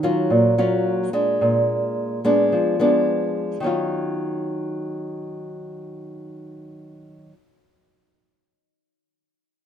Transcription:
nylon-string guitar
Already playing: D#3
0.03 F#3 C#4 F4
0.30 A#2
0.58 F#3 C#4 F4
1.13 G#3 D4
1.41 A#2
2.25 G#3 B3 D4
2.52 F3
2.80 G#3 B3 D4
3.60 D#3 F#3 C#4
3.66 F4

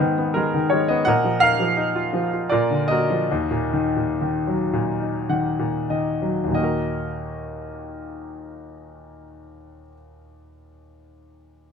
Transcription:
grand piano
Already playing: G#2 G#3 B3 D#4 G#4 B4
0.00 D#3
0.18 B3
0.34 G#3 A#4
0.54 D#3
0.70 G#3 C#5
0.88 B3 D#5
1.05 A#2 A#4 D#5 F#5
1.24 F3
1.40 D#4 A#4 F5
1.60 F3
1.77 D#4
1.96 F4
2.13 F3
2.33 F4
2.50 A#2 F4 A#4 D5
2.70 D3
2.88 A#3 F#4 A#4 D#5
3.10 F3
3.31 D#2
3.51 A#2
3.73 D#3
3.97 A#2
4.21 D#3
4.47 F#3
4.73 A#2
5.01 D#4
5.29 D#3 F#5
5.59 A#2
5.90 D#3 D#5
6.22 F#3
6.44 D#2 A#2
6.52 D#3 A#3 D#5
6.60 F#4 A#4

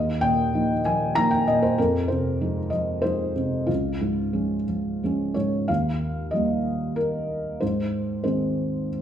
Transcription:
felt piano
Already playing: D#2 D#5
0.21 A#2 G5
0.54 F3 A#3 D#4
0.85 F3 G#5
1.15 F3 A#3 D#4 A#5
1.31 G5
1.48 A#2 D#5
1.63 C5
1.78 F2 A#4
2.08 C3 C5
2.41 F3 G#3 D#4
2.70 F3 D#5
3.02 F3 G#3 D#4 C5
3.36 C3
3.67 C#2 F4
4.01 G#2
4.33 F3 G#3 C#4
4.68 F3
5.03 F3 G#3 C#4
5.34 G#2 C#5
5.68 D#2 F5
6.31 F3 G3 A#3 D#5
6.96 A#4
7.61 G#2 C5
8.24 D#3 G#3 C4 C5

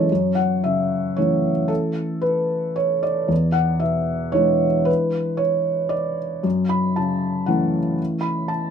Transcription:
felt piano
Already playing: F#2 G#3 C#4 D4 G#4 A4 C#5
0.00 E3
0.12 F#2
0.35 F#5
0.64 C#3 E5
1.16 E3 A3 C#4 C#5
1.68 A4
2.21 B4
2.76 C#5
3.03 D5
3.28 E2
3.52 F#5
3.80 B2 E5
4.32 E3 G#3 D4 C#5
4.85 B4
5.37 C#5
5.89 D5
6.43 F#2
6.69 B5
6.96 C#3 A5
7.46 E3 A3 C#4 F#5
8.21 B5
8.48 A5

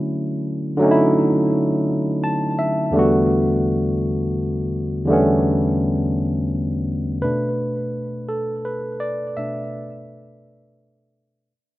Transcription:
tine electric piano
Already playing: D3 F#3 A3 C#4 E4
0.77 D3 F#3 A3
0.83 C#4 D#4
0.91 E4
2.24 A5
2.59 E5
2.91 E2 D3 G3
2.95 A3 B3 F#4
5.05 E2 D3 G3
5.10 A3 B3 C#4
7.22 B2 A3 D4 B4
8.29 A4
8.65 B4
9.00 D5
9.37 B2 A3 D4 E5

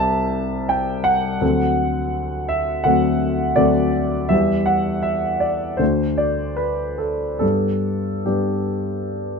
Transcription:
grand piano
Already playing: C2 G3 C4 C5 E5 A5
0.69 G5
1.04 F#5
1.41 D2 F#3 C4 A4
2.49 E5
2.84 D2 F#3 C4 A4 F#5
3.56 D2 F#3 C4 A4 D5
4.29 E2 G3 B3 G4 E5
4.66 F#5
5.03 E5
5.40 D5
5.77 D2 A3 D4 F#4 C5
6.18 D5
6.57 B4
6.98 A4
7.39 G2 B3 D4 G4 A4
8.25 G2 B3 D4 G4

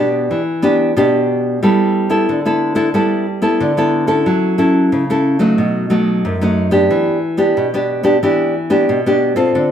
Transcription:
nylon-string guitar
Already playing: B2 B3 D4 G4
0.31 E3
0.62 B3 D4 G4
0.97 B2 B3 D4 G4
1.63 G3 B3 E4 A4
2.10 B3 E4 A4
2.29 D3
2.45 B3 E4 A4
2.75 B3 E4 A4
2.94 G3 B3 E4 A4
3.42 B3 E4 A4
3.60 D3
3.77 B3 E4 A4
4.07 C#4 E4 A4
4.26 F#3
4.58 C#4 E4 A4
4.92 C#3
5.10 C#4 E4 A4
5.39 F#3 A3 D#4
5.58 B2
5.90 F#3 A3 D#4
6.25 F#2
6.42 F#3 A3 D#4
6.71 B3 D4 G4
6.91 E3
7.37 B3 D4 G4
7.57 B2
7.74 B3 D4 G4
8.03 B3 D4 G4
8.23 E3 B3 D4 G4
8.70 B3 D4 G4
8.89 B2
9.06 B3 D4 G4
9.36 C4 F4 A4
9.55 D3

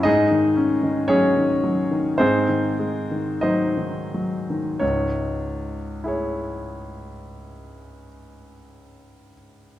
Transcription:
grand piano
0.03 G#2 D#4 G#4 D#5
0.31 D#3
0.56 C#4
0.83 D#3
1.08 F#3 C#4 G#4 C#5
1.37 D#3
1.63 F#3
1.91 D#3
2.18 G#2 C4 G#4 C5
2.49 D#3
2.79 G#3
3.11 D#3
3.41 F#3 D#4 C5 D#5
3.77 D#3
4.14 F#3
4.50 D#3
4.80 C#2 G#2 C#5
6.04 E4 G#4
6.08 C#5

